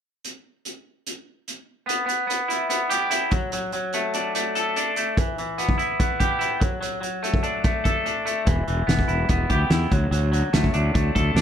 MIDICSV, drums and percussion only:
0, 0, Header, 1, 2, 480
1, 0, Start_track
1, 0, Key_signature, 1, "minor"
1, 0, Tempo, 412088
1, 281, Time_signature, 4, 2, 24, 8
1, 13295, End_track
2, 0, Start_track
2, 0, Title_t, "Drums"
2, 286, Note_on_c, 9, 42, 52
2, 403, Note_off_c, 9, 42, 0
2, 760, Note_on_c, 9, 42, 45
2, 877, Note_off_c, 9, 42, 0
2, 1241, Note_on_c, 9, 42, 53
2, 1357, Note_off_c, 9, 42, 0
2, 1722, Note_on_c, 9, 42, 51
2, 1838, Note_off_c, 9, 42, 0
2, 2201, Note_on_c, 9, 42, 74
2, 2318, Note_off_c, 9, 42, 0
2, 2433, Note_on_c, 9, 42, 51
2, 2549, Note_off_c, 9, 42, 0
2, 2679, Note_on_c, 9, 42, 67
2, 2795, Note_off_c, 9, 42, 0
2, 2912, Note_on_c, 9, 42, 57
2, 3029, Note_off_c, 9, 42, 0
2, 3145, Note_on_c, 9, 42, 75
2, 3262, Note_off_c, 9, 42, 0
2, 3385, Note_on_c, 9, 42, 59
2, 3502, Note_off_c, 9, 42, 0
2, 3621, Note_on_c, 9, 42, 77
2, 3738, Note_off_c, 9, 42, 0
2, 3859, Note_on_c, 9, 42, 49
2, 3865, Note_on_c, 9, 36, 85
2, 3976, Note_off_c, 9, 42, 0
2, 3981, Note_off_c, 9, 36, 0
2, 4101, Note_on_c, 9, 42, 82
2, 4217, Note_off_c, 9, 42, 0
2, 4338, Note_on_c, 9, 42, 51
2, 4455, Note_off_c, 9, 42, 0
2, 4575, Note_on_c, 9, 42, 68
2, 4691, Note_off_c, 9, 42, 0
2, 4819, Note_on_c, 9, 42, 55
2, 4936, Note_off_c, 9, 42, 0
2, 5067, Note_on_c, 9, 42, 73
2, 5183, Note_off_c, 9, 42, 0
2, 5305, Note_on_c, 9, 42, 56
2, 5421, Note_off_c, 9, 42, 0
2, 5549, Note_on_c, 9, 42, 66
2, 5665, Note_off_c, 9, 42, 0
2, 5782, Note_on_c, 9, 42, 52
2, 5898, Note_off_c, 9, 42, 0
2, 6027, Note_on_c, 9, 36, 99
2, 6028, Note_on_c, 9, 42, 72
2, 6144, Note_off_c, 9, 36, 0
2, 6145, Note_off_c, 9, 42, 0
2, 6271, Note_on_c, 9, 42, 47
2, 6388, Note_off_c, 9, 42, 0
2, 6505, Note_on_c, 9, 42, 67
2, 6621, Note_off_c, 9, 42, 0
2, 6623, Note_on_c, 9, 36, 71
2, 6740, Note_off_c, 9, 36, 0
2, 6748, Note_on_c, 9, 42, 58
2, 6865, Note_off_c, 9, 42, 0
2, 6987, Note_on_c, 9, 36, 95
2, 6988, Note_on_c, 9, 42, 82
2, 7103, Note_off_c, 9, 36, 0
2, 7105, Note_off_c, 9, 42, 0
2, 7225, Note_on_c, 9, 36, 72
2, 7228, Note_on_c, 9, 42, 56
2, 7342, Note_off_c, 9, 36, 0
2, 7344, Note_off_c, 9, 42, 0
2, 7466, Note_on_c, 9, 42, 74
2, 7583, Note_off_c, 9, 42, 0
2, 7705, Note_on_c, 9, 36, 90
2, 7707, Note_on_c, 9, 42, 54
2, 7822, Note_off_c, 9, 36, 0
2, 7824, Note_off_c, 9, 42, 0
2, 7950, Note_on_c, 9, 42, 74
2, 8067, Note_off_c, 9, 42, 0
2, 8190, Note_on_c, 9, 42, 53
2, 8307, Note_off_c, 9, 42, 0
2, 8430, Note_on_c, 9, 42, 65
2, 8545, Note_on_c, 9, 36, 74
2, 8547, Note_off_c, 9, 42, 0
2, 8661, Note_off_c, 9, 36, 0
2, 8661, Note_on_c, 9, 42, 53
2, 8778, Note_off_c, 9, 42, 0
2, 8899, Note_on_c, 9, 42, 66
2, 8904, Note_on_c, 9, 36, 100
2, 9016, Note_off_c, 9, 42, 0
2, 9020, Note_off_c, 9, 36, 0
2, 9147, Note_on_c, 9, 36, 72
2, 9148, Note_on_c, 9, 42, 56
2, 9263, Note_off_c, 9, 36, 0
2, 9264, Note_off_c, 9, 42, 0
2, 9390, Note_on_c, 9, 42, 65
2, 9507, Note_off_c, 9, 42, 0
2, 9630, Note_on_c, 9, 42, 54
2, 9746, Note_off_c, 9, 42, 0
2, 9861, Note_on_c, 9, 42, 75
2, 9866, Note_on_c, 9, 36, 98
2, 9978, Note_off_c, 9, 42, 0
2, 9983, Note_off_c, 9, 36, 0
2, 10108, Note_on_c, 9, 42, 49
2, 10224, Note_off_c, 9, 42, 0
2, 10353, Note_on_c, 9, 42, 71
2, 10355, Note_on_c, 9, 38, 87
2, 10467, Note_on_c, 9, 36, 70
2, 10470, Note_off_c, 9, 42, 0
2, 10472, Note_off_c, 9, 38, 0
2, 10584, Note_off_c, 9, 36, 0
2, 10585, Note_on_c, 9, 42, 55
2, 10701, Note_off_c, 9, 42, 0
2, 10819, Note_on_c, 9, 42, 78
2, 10826, Note_on_c, 9, 36, 97
2, 10935, Note_off_c, 9, 42, 0
2, 10943, Note_off_c, 9, 36, 0
2, 11063, Note_on_c, 9, 42, 56
2, 11066, Note_on_c, 9, 36, 70
2, 11180, Note_off_c, 9, 42, 0
2, 11183, Note_off_c, 9, 36, 0
2, 11304, Note_on_c, 9, 42, 74
2, 11306, Note_on_c, 9, 38, 102
2, 11420, Note_off_c, 9, 42, 0
2, 11422, Note_off_c, 9, 38, 0
2, 11550, Note_on_c, 9, 36, 92
2, 11552, Note_on_c, 9, 42, 53
2, 11667, Note_off_c, 9, 36, 0
2, 11669, Note_off_c, 9, 42, 0
2, 11792, Note_on_c, 9, 42, 81
2, 11909, Note_off_c, 9, 42, 0
2, 12036, Note_on_c, 9, 42, 55
2, 12153, Note_off_c, 9, 42, 0
2, 12271, Note_on_c, 9, 42, 69
2, 12273, Note_on_c, 9, 38, 98
2, 12388, Note_off_c, 9, 42, 0
2, 12390, Note_off_c, 9, 38, 0
2, 12393, Note_on_c, 9, 36, 74
2, 12509, Note_on_c, 9, 42, 59
2, 12510, Note_off_c, 9, 36, 0
2, 12625, Note_off_c, 9, 42, 0
2, 12756, Note_on_c, 9, 36, 99
2, 12758, Note_on_c, 9, 42, 69
2, 12873, Note_off_c, 9, 36, 0
2, 12874, Note_off_c, 9, 42, 0
2, 12997, Note_on_c, 9, 36, 79
2, 12997, Note_on_c, 9, 42, 53
2, 13113, Note_off_c, 9, 36, 0
2, 13114, Note_off_c, 9, 42, 0
2, 13236, Note_on_c, 9, 42, 67
2, 13238, Note_on_c, 9, 38, 91
2, 13295, Note_off_c, 9, 38, 0
2, 13295, Note_off_c, 9, 42, 0
2, 13295, End_track
0, 0, End_of_file